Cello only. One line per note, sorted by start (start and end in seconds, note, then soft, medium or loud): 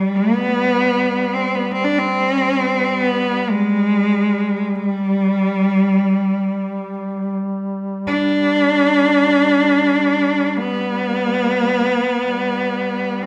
0.00 0.17 G3 medium
0.15 1.36 B3 medium
1.35 1.57 C4 medium
1.55 1.73 B3 medium
1.71 1.86 C4 medium
1.84 2.00 D4 medium
1.98 2.88 C4 medium
2.88 3.00 C4 medium
3.00 3.51 B3 medium
3.50 4.76 G#3 medium
4.76 4.89 G#3 medium
4.89 7.31 G3 medium
8.07 10.59 D4 medium
10.57 13.24 B3 medium
13.22 13.26 C4 medium